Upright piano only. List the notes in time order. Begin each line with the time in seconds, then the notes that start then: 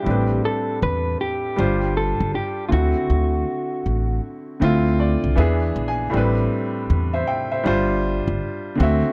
0.02 A2 G3 C4
0.08 D4 B4
1.56 G3 D4 F4 C5
2.68 D3 C4
2.73 E4 F#4
4.60 D3 C4 E4 F4
5.00 D5
5.35 E3 B3 D4 G#4 E5
5.88 G#5
6.10 A2 G3 C4
6.15 D4 B4
7.13 C5 E5
7.27 E5 G5
7.51 C5 E5
7.64 G3 D4 F4 C5
8.75 D3 C4
8.80 F#4 E5